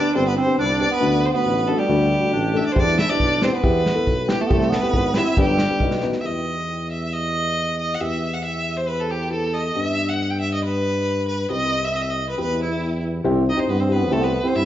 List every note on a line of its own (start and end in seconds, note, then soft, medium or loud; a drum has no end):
0.00 0.18 D4 medium
0.00 0.14 D5 medium
0.14 0.41 G1 medium
0.14 0.31 B3 medium
0.14 0.29 C4 medium
0.14 0.31 D4 medium
0.14 0.31 G4 medium
0.14 0.25 C5 loud
0.27 0.36 B3 medium
0.27 0.37 B4 medium
0.36 0.57 C4 medium
0.36 0.58 C5 medium
0.46 0.63 B3 medium
0.46 0.63 D4 soft
0.46 0.63 G4 medium
0.58 0.84 C2 medium
0.58 0.67 D4 medium
0.58 0.80 D5 medium
0.66 0.73 E4 medium
0.72 0.90 D4 medium
0.79 0.91 B3 medium
0.79 0.91 D4 medium
0.79 0.91 G4 medium
0.79 0.91 D5 medium
0.91 1.32 B3 medium
0.91 1.27 B4 loud
1.00 1.28 D2 loud
1.00 1.18 A3 medium
1.00 1.18 D4 medium
1.00 1.18 F#4 medium
1.25 1.37 C5 medium
1.33 1.51 A3 medium
1.33 1.80 B3 medium
1.33 1.51 D4 soft
1.33 1.51 F#4 medium
1.33 1.69 B4 medium
1.45 1.72 A1 medium
1.67 1.79 A3 medium
1.67 1.79 D4 medium
1.67 1.79 F#4 medium
1.67 1.79 A4 medium
1.78 2.35 G3 medium
1.78 2.58 G4 medium
1.89 2.15 D2 loud
1.89 2.05 A3 medium
1.89 2.05 D4 medium
1.89 2.05 F#4 medium
2.20 2.38 A3 medium
2.20 2.38 D4 medium
2.20 2.37 F#4 medium
2.33 2.60 A1 medium
2.33 2.80 D4 medium
2.54 2.65 A3 medium
2.54 2.65 D4 medium
2.54 2.65 A4 medium
2.54 2.65 E5 medium
2.66 2.73 D5 medium
2.72 2.92 B3 medium
2.72 2.92 E4 medium
2.72 2.92 G4 medium
2.72 2.81 C5 medium
2.76 3.02 E2 loud
2.76 2.98 D5 loud
2.76 kick medium
2.80 3.01 D4 medium
2.88 snare soft
2.99 3.10 E4 medium
2.99 3.11 E5 medium
2.99 snare medium
3.09 3.26 B3 soft
3.09 3.44 D4 medium
3.09 3.26 E4 soft
3.09 3.26 G4 medium
3.09 3.44 D5 loud
3.20 3.46 B1 medium
3.20 kick medium
3.42 3.53 B3 medium
3.42 3.54 C4 medium
3.42 3.53 E4 medium
3.42 3.53 G4 medium
3.42 3.56 C5 medium
3.42 snare medium
3.53 4.13 B3 medium
3.53 4.30 B4 medium
3.63 3.90 E2 medium
3.63 3.80 B3 medium
3.63 3.80 E4 medium
3.63 3.80 G4 medium
3.63 kick medium
3.86 snare medium
3.95 4.12 B3 medium
3.95 4.12 E4 soft
3.95 4.12 A4 medium
4.07 4.33 B1 medium
4.07 kick medium
4.28 4.39 B3 medium
4.28 4.39 E4 medium
4.28 4.39 G4 medium
4.28 snare medium
4.32 4.42 G4 medium
4.40 4.48 A3 medium
4.40 4.76 A4 medium
4.46 4.54 B3 medium
4.46 4.66 C4 medium
4.46 4.67 E4 medium
4.46 4.67 G4 medium
4.51 4.77 C2 loud
4.51 4.71 A3 medium
4.51 kick medium
4.61 snare soft
4.70 5.17 B3 medium
4.70 snare medium
4.74 5.19 B4 medium
4.83 4.99 C4 soft
4.83 5.00 E4 medium
4.83 5.00 G4 medium
4.83 snare soft
4.93 5.20 G#1 loud
4.93 kick medium
5.14 5.27 C4 medium
5.14 5.39 E4 medium
5.14 5.27 E4 medium
5.14 5.27 G4 medium
5.14 5.39 E5 medium
5.14 snare medium
5.37 5.64 G1 loud
5.37 5.49 G3 medium
5.37 5.54 B3 medium
5.37 5.54 D4 medium
5.37 5.54 G4 medium
5.37 6.01 G4 medium
5.37 kick medium
5.47 5.55 F#3 medium
5.53 6.04 G3 medium
5.58 snare medium
5.70 5.80 B3 medium
5.70 5.81 D4 soft
5.70 5.81 G4 medium
5.80 6.07 B1 medium
5.80 5.99 B3 medium
5.80 5.99 D#4 medium
5.80 5.99 F#4 medium
5.80 kick medium
5.91 snare medium
6.01 6.14 B3 medium
6.01 6.14 D#4 medium
6.01 6.14 F#4 medium
6.01 snare soft
6.12 snare soft
6.20 7.96 B3 medium
6.20 7.96 E4 medium
6.20 7.96 G4 medium
6.20 6.27 E5 medium
6.25 7.97 E2 medium
6.25 6.91 D#5 medium
6.91 7.15 E5 medium
7.13 7.79 D#5 medium
7.79 7.96 D#5 medium
7.94 8.02 F#5 medium
8.01 9.72 E2 medium
8.01 9.29 B3 medium
8.01 9.29 E4 soft
8.01 9.29 G4 medium
8.01 8.35 E5 medium
8.34 8.43 F#5 medium
8.44 8.78 E5 medium
8.77 8.90 C5 medium
8.88 9.01 B4 medium
9.00 9.12 A4 medium
9.10 9.32 G4 medium
9.30 9.74 B3 soft
9.30 9.75 E4 soft
9.30 9.73 G4 soft
9.30 9.55 A4 medium
9.54 9.77 D#5 medium
9.75 11.47 G2 medium
9.75 11.47 B3 soft
9.75 11.47 D4 soft
9.75 11.47 G4 medium
9.75 10.10 E5 medium
10.09 10.32 F#5 medium
10.30 10.40 G5 medium
10.41 10.51 E5 medium
10.54 10.63 D#5 medium
10.64 11.25 B4 loud
11.28 11.49 B4 medium
11.50 12.35 C2 medium
11.50 12.36 C4 medium
11.50 12.36 E4 soft
11.50 12.36 G4 medium
11.50 11.86 D#5 medium
11.85 11.98 E5 medium
11.96 12.03 D#5 medium
12.02 12.12 E5 medium
12.10 12.28 D#5 medium
12.29 12.38 B4 medium
12.38 13.23 E2 medium
12.38 13.23 B3 medium
12.38 13.23 E4 medium
12.38 13.23 G4 medium
12.38 12.59 B4 medium
12.63 13.02 E4 medium
13.24 13.51 C2 medium
13.24 13.41 C4 medium
13.24 13.41 E4 medium
13.24 13.41 G4 loud
13.46 13.71 D#4 medium
13.46 13.61 D#5 medium
13.57 13.73 C4 medium
13.57 13.73 E4 medium
13.57 13.73 G4 medium
13.57 13.72 C5 medium
13.69 14.13 G2 medium
13.69 13.79 B3 medium
13.69 13.81 B4 medium
13.80 13.93 C4 medium
13.80 13.94 C5 medium
13.89 14.14 B3 medium
13.89 14.00 C4 medium
13.89 14.01 E4 medium
13.89 14.00 G4 medium
13.89 14.14 B4 medium
14.11 14.38 C2 medium
14.11 14.23 A3 medium
14.11 14.28 C4 medium
14.11 14.28 E4 medium
14.11 14.28 G4 medium
14.11 14.25 A4 medium
14.21 14.46 B3 medium
14.21 14.49 B4 medium
14.44 14.55 C4 medium
14.44 14.61 C4 medium
14.44 14.60 E4 medium
14.44 14.60 G4 medium
14.44 14.57 C5 medium
14.56 14.65 G2 medium
14.56 14.65 E4 medium
14.56 14.65 E5 medium